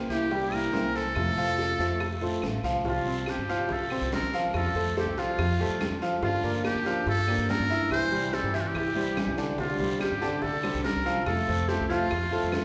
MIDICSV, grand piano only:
0, 0, Header, 1, 2, 480
1, 0, Start_track
1, 0, Key_signature, -1, "major"
1, 0, Tempo, 421348
1, 1324, Time_signature, 4, 2, 24, 8
1, 14406, End_track
2, 0, Start_track
2, 0, Title_t, "Grand piano"
2, 0, Program_c, 0, 0
2, 0, Note_on_c, 0, 58, 67
2, 0, Note_on_c, 0, 70, 71
2, 0, Note_on_c, 0, 72, 69
2, 268, Note_off_c, 0, 58, 0
2, 270, Note_off_c, 0, 70, 0
2, 273, Note_off_c, 0, 72, 0
2, 354, Note_on_c, 0, 55, 73
2, 357, Note_on_c, 0, 67, 71
2, 361, Note_on_c, 0, 79, 77
2, 752, Note_off_c, 0, 55, 0
2, 753, Note_off_c, 0, 67, 0
2, 756, Note_off_c, 0, 79, 0
2, 839, Note_on_c, 0, 58, 64
2, 845, Note_on_c, 0, 70, 70
2, 848, Note_on_c, 0, 72, 69
2, 1038, Note_off_c, 0, 58, 0
2, 1041, Note_off_c, 0, 70, 0
2, 1043, Note_off_c, 0, 72, 0
2, 1087, Note_on_c, 0, 69, 72
2, 1092, Note_on_c, 0, 72, 77
2, 1481, Note_off_c, 0, 69, 0
2, 1484, Note_off_c, 0, 72, 0
2, 1567, Note_on_c, 0, 53, 80
2, 1567, Note_on_c, 0, 65, 78
2, 1573, Note_on_c, 0, 77, 73
2, 1962, Note_off_c, 0, 53, 0
2, 1962, Note_off_c, 0, 65, 0
2, 1966, Note_off_c, 0, 77, 0
2, 2044, Note_on_c, 0, 57, 72
2, 2049, Note_on_c, 0, 69, 71
2, 2053, Note_on_c, 0, 72, 68
2, 2441, Note_off_c, 0, 57, 0
2, 2445, Note_off_c, 0, 69, 0
2, 2447, Note_off_c, 0, 72, 0
2, 2521, Note_on_c, 0, 57, 74
2, 2526, Note_on_c, 0, 69, 67
2, 2529, Note_on_c, 0, 72, 71
2, 2920, Note_off_c, 0, 57, 0
2, 2923, Note_off_c, 0, 69, 0
2, 2925, Note_off_c, 0, 72, 0
2, 3006, Note_on_c, 0, 53, 88
2, 3010, Note_on_c, 0, 65, 82
2, 3016, Note_on_c, 0, 77, 84
2, 3206, Note_off_c, 0, 53, 0
2, 3209, Note_off_c, 0, 65, 0
2, 3212, Note_off_c, 0, 77, 0
2, 3250, Note_on_c, 0, 53, 67
2, 3255, Note_on_c, 0, 65, 73
2, 3255, Note_on_c, 0, 77, 70
2, 3449, Note_off_c, 0, 53, 0
2, 3452, Note_off_c, 0, 65, 0
2, 3452, Note_off_c, 0, 77, 0
2, 3495, Note_on_c, 0, 60, 69
2, 3498, Note_on_c, 0, 72, 69
2, 3889, Note_off_c, 0, 60, 0
2, 3891, Note_off_c, 0, 72, 0
2, 3976, Note_on_c, 0, 53, 79
2, 3980, Note_on_c, 0, 65, 84
2, 3983, Note_on_c, 0, 77, 86
2, 4370, Note_off_c, 0, 53, 0
2, 4372, Note_off_c, 0, 65, 0
2, 4374, Note_off_c, 0, 77, 0
2, 4462, Note_on_c, 0, 60, 76
2, 4466, Note_on_c, 0, 72, 76
2, 4854, Note_off_c, 0, 60, 0
2, 4856, Note_off_c, 0, 72, 0
2, 4943, Note_on_c, 0, 53, 85
2, 4947, Note_on_c, 0, 65, 88
2, 4949, Note_on_c, 0, 77, 86
2, 5334, Note_off_c, 0, 53, 0
2, 5336, Note_off_c, 0, 65, 0
2, 5338, Note_off_c, 0, 77, 0
2, 5421, Note_on_c, 0, 57, 73
2, 5425, Note_on_c, 0, 69, 72
2, 5428, Note_on_c, 0, 72, 72
2, 5616, Note_off_c, 0, 57, 0
2, 5618, Note_off_c, 0, 69, 0
2, 5620, Note_off_c, 0, 72, 0
2, 5655, Note_on_c, 0, 57, 69
2, 5659, Note_on_c, 0, 69, 75
2, 5663, Note_on_c, 0, 72, 75
2, 5852, Note_off_c, 0, 57, 0
2, 5855, Note_off_c, 0, 69, 0
2, 5857, Note_off_c, 0, 72, 0
2, 5899, Note_on_c, 0, 53, 78
2, 5902, Note_on_c, 0, 65, 81
2, 5906, Note_on_c, 0, 77, 82
2, 6291, Note_off_c, 0, 53, 0
2, 6293, Note_off_c, 0, 65, 0
2, 6295, Note_off_c, 0, 77, 0
2, 6382, Note_on_c, 0, 57, 74
2, 6384, Note_on_c, 0, 69, 74
2, 6388, Note_on_c, 0, 72, 77
2, 6772, Note_off_c, 0, 57, 0
2, 6774, Note_off_c, 0, 69, 0
2, 6776, Note_off_c, 0, 72, 0
2, 6857, Note_on_c, 0, 53, 88
2, 6862, Note_on_c, 0, 65, 86
2, 6863, Note_on_c, 0, 77, 84
2, 7052, Note_off_c, 0, 53, 0
2, 7055, Note_off_c, 0, 65, 0
2, 7056, Note_off_c, 0, 77, 0
2, 7092, Note_on_c, 0, 53, 71
2, 7098, Note_on_c, 0, 65, 79
2, 7099, Note_on_c, 0, 77, 76
2, 7290, Note_off_c, 0, 53, 0
2, 7293, Note_off_c, 0, 65, 0
2, 7293, Note_off_c, 0, 77, 0
2, 7333, Note_on_c, 0, 58, 70
2, 7335, Note_on_c, 0, 70, 72
2, 7337, Note_on_c, 0, 74, 73
2, 7726, Note_off_c, 0, 58, 0
2, 7727, Note_off_c, 0, 70, 0
2, 7728, Note_off_c, 0, 74, 0
2, 7811, Note_on_c, 0, 53, 88
2, 7817, Note_on_c, 0, 65, 86
2, 7820, Note_on_c, 0, 77, 85
2, 8204, Note_off_c, 0, 53, 0
2, 8207, Note_off_c, 0, 65, 0
2, 8209, Note_off_c, 0, 77, 0
2, 8290, Note_on_c, 0, 58, 76
2, 8293, Note_on_c, 0, 70, 74
2, 8298, Note_on_c, 0, 74, 74
2, 8683, Note_off_c, 0, 58, 0
2, 8685, Note_off_c, 0, 70, 0
2, 8688, Note_off_c, 0, 74, 0
2, 8774, Note_on_c, 0, 64, 92
2, 8777, Note_on_c, 0, 76, 89
2, 9164, Note_off_c, 0, 64, 0
2, 9166, Note_off_c, 0, 76, 0
2, 9247, Note_on_c, 0, 55, 77
2, 9251, Note_on_c, 0, 67, 70
2, 9256, Note_on_c, 0, 72, 71
2, 9444, Note_off_c, 0, 55, 0
2, 9446, Note_off_c, 0, 67, 0
2, 9449, Note_off_c, 0, 72, 0
2, 9487, Note_on_c, 0, 55, 76
2, 9489, Note_on_c, 0, 67, 68
2, 9492, Note_on_c, 0, 72, 73
2, 9683, Note_off_c, 0, 55, 0
2, 9684, Note_off_c, 0, 67, 0
2, 9686, Note_off_c, 0, 72, 0
2, 9727, Note_on_c, 0, 52, 82
2, 9731, Note_on_c, 0, 64, 83
2, 9736, Note_on_c, 0, 76, 85
2, 10119, Note_off_c, 0, 52, 0
2, 10121, Note_off_c, 0, 64, 0
2, 10124, Note_off_c, 0, 76, 0
2, 10208, Note_on_c, 0, 55, 70
2, 10212, Note_on_c, 0, 67, 80
2, 10215, Note_on_c, 0, 72, 71
2, 10599, Note_off_c, 0, 55, 0
2, 10601, Note_off_c, 0, 67, 0
2, 10603, Note_off_c, 0, 72, 0
2, 10684, Note_on_c, 0, 50, 80
2, 10687, Note_on_c, 0, 62, 82
2, 10690, Note_on_c, 0, 74, 81
2, 10880, Note_off_c, 0, 50, 0
2, 10881, Note_off_c, 0, 62, 0
2, 10883, Note_off_c, 0, 74, 0
2, 10927, Note_on_c, 0, 50, 69
2, 10931, Note_on_c, 0, 62, 66
2, 10935, Note_on_c, 0, 74, 68
2, 11121, Note_off_c, 0, 50, 0
2, 11123, Note_off_c, 0, 62, 0
2, 11126, Note_off_c, 0, 74, 0
2, 11161, Note_on_c, 0, 55, 72
2, 11165, Note_on_c, 0, 67, 69
2, 11167, Note_on_c, 0, 72, 74
2, 11554, Note_off_c, 0, 55, 0
2, 11556, Note_off_c, 0, 67, 0
2, 11557, Note_off_c, 0, 72, 0
2, 11635, Note_on_c, 0, 50, 82
2, 11639, Note_on_c, 0, 62, 84
2, 11644, Note_on_c, 0, 74, 86
2, 12029, Note_off_c, 0, 50, 0
2, 12032, Note_off_c, 0, 62, 0
2, 12034, Note_off_c, 0, 74, 0
2, 12117, Note_on_c, 0, 55, 75
2, 12118, Note_on_c, 0, 67, 69
2, 12120, Note_on_c, 0, 72, 72
2, 12510, Note_off_c, 0, 55, 0
2, 12511, Note_off_c, 0, 67, 0
2, 12512, Note_off_c, 0, 72, 0
2, 12592, Note_on_c, 0, 53, 82
2, 12597, Note_on_c, 0, 65, 87
2, 12600, Note_on_c, 0, 77, 90
2, 12987, Note_off_c, 0, 53, 0
2, 12989, Note_off_c, 0, 65, 0
2, 12991, Note_off_c, 0, 77, 0
2, 13074, Note_on_c, 0, 57, 75
2, 13077, Note_on_c, 0, 69, 71
2, 13080, Note_on_c, 0, 72, 67
2, 13271, Note_off_c, 0, 57, 0
2, 13273, Note_off_c, 0, 69, 0
2, 13274, Note_off_c, 0, 72, 0
2, 13309, Note_on_c, 0, 57, 78
2, 13312, Note_on_c, 0, 69, 69
2, 13315, Note_on_c, 0, 72, 71
2, 13508, Note_off_c, 0, 57, 0
2, 13510, Note_off_c, 0, 69, 0
2, 13512, Note_off_c, 0, 72, 0
2, 13552, Note_on_c, 0, 53, 91
2, 13554, Note_on_c, 0, 65, 91
2, 13559, Note_on_c, 0, 77, 89
2, 13946, Note_off_c, 0, 53, 0
2, 13947, Note_off_c, 0, 65, 0
2, 13950, Note_off_c, 0, 77, 0
2, 14035, Note_on_c, 0, 57, 74
2, 14035, Note_on_c, 0, 69, 78
2, 14039, Note_on_c, 0, 72, 78
2, 14406, Note_off_c, 0, 57, 0
2, 14406, Note_off_c, 0, 69, 0
2, 14406, Note_off_c, 0, 72, 0
2, 14406, End_track
0, 0, End_of_file